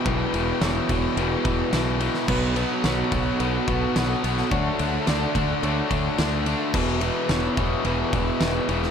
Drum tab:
CC |----------------|x---------------|----------------|x---------------|
RD |x-x-x-x-x-x-x-x-|--x-x-x-x-x-x-x-|x-x-x-x-x-x-x-x-|--x-x-x-x-x-x-x-|
SD |----o-------o--o|----o-------o--o|----o-------o---|----o-------o--o|
BD |o-----o---o-----|o-----o---o-----|o-----o---o-----|o-----o---o-----|